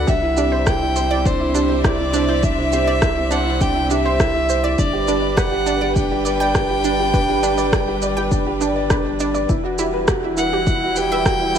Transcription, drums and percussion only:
0.08 kick, shaker
0.37 shaker
0.67 kick, cross-stick, shaker
0.96 shaker
1.25 kick, shaker
1.55 shaker
1.84 kick, cross-stick, shaker
2.14 shaker
2.43 kick, shaker
2.73 shaker
3.02 kick, cross-stick, shaker
3.31 shaker
3.61 kick, shaker
3.91 shaker
4.20 kick, cross-stick, shaker
4.49 shaker
4.78 kick, shaker
5.08 shaker
5.37 kick, cross-stick, shaker
5.67 shaker
5.96 kick, shaker
6.26 shaker
6.55 kick, cross-stick, shaker
6.84 shaker
7.14 kick, shaker
7.43 shaker
7.58 shaker
7.73 kick, cross-stick, shaker
8.02 shaker
8.31 kick, shaker
8.61 shaker
8.90 kick, cross-stick, shaker
9.20 shaker
9.35 shaker
9.49 kick, shaker
9.78 shaker
10.08 kick, cross-stick, shaker
10.37 shaker
10.67 kick, shaker
10.96 shaker
11.26 kick, cross-stick, shaker
11.55 shaker

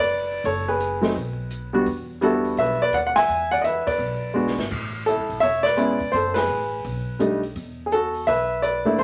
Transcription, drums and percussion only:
0.45 kick, open hi-hat
0.80 closed hi-hat
1.03 snare, open hi-hat
1.16 kick, open hi-hat
1.51 closed hi-hat
1.86 kick, open hi-hat
2.22 closed hi-hat
2.45 open hi-hat
2.57 kick, open hi-hat
2.93 closed hi-hat
3.16 snare, open hi-hat
3.29 kick, open hi-hat
3.64 closed hi-hat
3.87 kick, ride
4.48 snare
4.59 snare
4.71 kick, crash
5.07 closed hi-hat
5.30 open hi-hat
5.42 kick, open hi-hat
5.65 snare
5.77 closed hi-hat
6.00 kick, open hi-hat
6.13 kick, open hi-hat
6.36 snare, ride
6.84 kick, open hi-hat
7.20 closed hi-hat
7.43 open hi-hat
7.56 kick, open hi-hat
7.92 closed hi-hat
8.14 open hi-hat
8.27 kick, open hi-hat
8.63 closed hi-hat
8.99 kick, open hi-hat

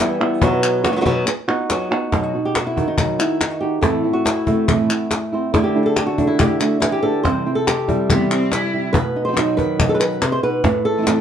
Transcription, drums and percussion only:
0.00 clap
0.21 clap
0.42 cajon bass
0.63 clap
0.85 cajon slap
1.06 cajon bass
1.27 cajon slap, clap
1.49 cajon slap
1.70 cajon slap, clap
2.12 cajon bass, cajon slap
2.55 cajon slap, clap
2.77 cajon bass
2.98 cajon bass, clap
3.20 clap
3.41 cajon slap, clap
3.83 cajon bass, cajon slap
4.26 cajon slap, clap
4.47 cajon bass
4.68 cajon bass, clap
4.90 clap
5.11 cajon slap, clap
5.54 cajon bass, cajon slap
5.96 cajon slap, clap
6.18 cajon bass
6.39 cajon bass, clap
6.61 clap
6.82 cajon slap, clap
7.25 cajon bass, cajon slap
7.67 cajon slap, clap
7.89 cajon bass
8.10 cajon bass, clap
8.31 clap
8.52 cajon slap, clap
8.94 cajon bass
9.37 cajon slap, clap
9.58 cajon bass
9.80 cajon bass, clap
10.01 clap
10.22 cajon slap, clap
10.64 cajon bass, cajon slap
11.07 cajon slap, clap

